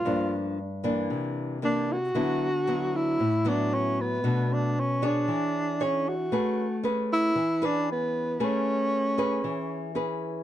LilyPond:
<<
  \new Staff \with { instrumentName = "Tenor saxophone" } { \time 4/4 \key a \major \tempo 4 = 115 f'8 r2 r8 d'8 fis'8~ | fis'4. e'4 d'8 cis'8 b8~ | b8 d'8 cis'8 d'4. cis'8 fis'8~ | fis'4 r8 e'4 d'8 b4 |
cis'2. r4 | }
  \new Staff \with { instrumentName = "Nylon-string guitar" } { \time 4/4 \key a \major << { <f bes d'>4 r8 <e bes d'>4. <e bes d'>8 r8 | <fis b e'>8 r8 <fis b e'>4 r8 <fis b e'>4. | <a d' fis'>4 r8 <d' gis' cis''>4. <d' gis' cis''>8 r8 | <cis' gis' b'>8 r8 <cis' gis' b'>4 r8 <cis' gis' b'>4. |
<cis' gis' b'>4. <cis' gis' b'>4. <cis' gis' b'>4 | } \\ { g,2 c2 | d2 a,2 | b,2 e2 | a2 e2 |
a2 e2 | } >> }
>>